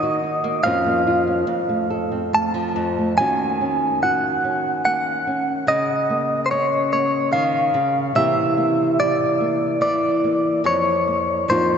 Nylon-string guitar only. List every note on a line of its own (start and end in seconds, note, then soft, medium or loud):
0.00 0.64 D#3 medium
0.00 0.43 A#3 medium
0.00 0.22 D#4 medium
0.00 0.60 F#4 medium
0.23 0.60 D#4 medium
0.44 0.60 A#3 medium
0.64 1.46 F2 medium
0.64 1.43 F3 medium
0.64 0.85 A#3 medium
0.64 1.26 C#4 medium
0.64 1.06 F4 medium
0.86 1.44 A#3 medium
1.07 1.90 F4 medium
1.27 1.44 C#4 soft
1.47 2.74 F2 medium
1.69 2.32 A3 medium
1.90 3.12 A4 medium
2.11 3.17 C4 medium
2.33 2.96 A3 medium
2.54 3.12 F3 medium
2.76 3.17 F2 medium
2.98 3.13 A3 soft
3.19 5.68 D#3 medium
3.19 4.85 A#3 medium
3.19 3.61 C#4 medium
3.19 4.03 F#4 medium
3.61 4.44 C#4 medium
4.04 5.64 F#4 medium
4.44 5.26 C#4 soft
4.85 6.10 A#3 medium
5.27 5.63 C#4 medium
5.67 7.73 C#3 medium
6.10 6.93 A#3 medium
6.52 8.12 C#4 medium
6.93 8.16 A#3 soft
7.33 7.75 D#3 medium
7.74 8.15 C#3 medium
8.15 9.82 C3 medium
8.15 9.80 E3 medium
8.15 8.57 A#3 medium
8.15 8.98 E4 medium
8.15 10.61 G4 medium
8.57 9.40 A#3 medium
8.99 10.61 E4 medium
9.40 10.24 A#3 soft
9.81 10.60 E3 medium
10.24 11.07 A#3 medium
10.64 11.47 F2 medium
11.07 11.49 A#3 medium
11.48 11.78 F2 medium
11.48 11.78 F3 medium
11.48 11.78 A#3 medium
11.48 11.78 D#4 medium
11.48 11.78 F4 medium